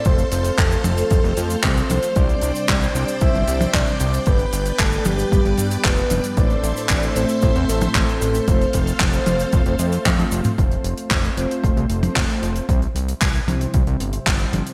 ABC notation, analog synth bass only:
X:1
M:4/4
L:1/16
Q:1/4=114
K:Flyd
V:1 name="Analog synth bass" clef=bass
F,,, z F,,, z F,,, z F,,, z F,,, F,,, F,, z C,, z C,, z | C,, z C,, z C,, z C,, z C,, G,,, C,, z C,, z C,, z | G,,, z G,,, z G,,, z G,,, z G,,, G,,, G,, z F,,, z F,,, z | A,,, z A,,, z A,,, z A,,, z A,,, E,, A,,, z A,,, z A,,, z |
F,,, z F,,, z F,,, z F,,, z F,,, F,,, F,, z F,, z F,,, z | F,,, z F,,, z F,,, z F,,, z F,,, C,, F,,, z F,,, z F,,, z | C,, z C,, z C,, z C,, z C,, C,, G,,, z G,,, z G,,, z |]